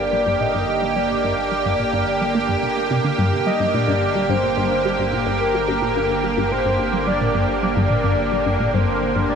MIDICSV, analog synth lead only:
0, 0, Header, 1, 2, 480
1, 0, Start_track
1, 0, Key_signature, -2, "minor"
1, 0, Tempo, 555556
1, 830, Time_signature, 4, 2, 24, 8
1, 8079, End_track
2, 0, Start_track
2, 0, Title_t, "Analog synth lead"
2, 0, Program_c, 0, 81
2, 0, Note_on_c, 0, 74, 107
2, 348, Note_on_c, 0, 75, 118
2, 361, Note_off_c, 0, 74, 0
2, 827, Note_on_c, 0, 74, 112
2, 840, Note_off_c, 0, 75, 0
2, 2269, Note_off_c, 0, 74, 0
2, 2993, Note_on_c, 0, 75, 103
2, 3236, Note_on_c, 0, 74, 97
2, 3249, Note_off_c, 0, 75, 0
2, 3713, Note_on_c, 0, 72, 91
2, 3726, Note_off_c, 0, 74, 0
2, 4432, Note_off_c, 0, 72, 0
2, 4674, Note_on_c, 0, 70, 94
2, 5629, Note_on_c, 0, 72, 96
2, 5642, Note_off_c, 0, 70, 0
2, 6106, Note_off_c, 0, 72, 0
2, 6111, Note_on_c, 0, 74, 105
2, 6446, Note_off_c, 0, 74, 0
2, 6593, Note_on_c, 0, 74, 113
2, 7553, Note_on_c, 0, 72, 104
2, 7566, Note_off_c, 0, 74, 0
2, 8028, Note_off_c, 0, 72, 0
2, 8034, Note_on_c, 0, 74, 109
2, 8079, Note_off_c, 0, 74, 0
2, 8079, End_track
0, 0, End_of_file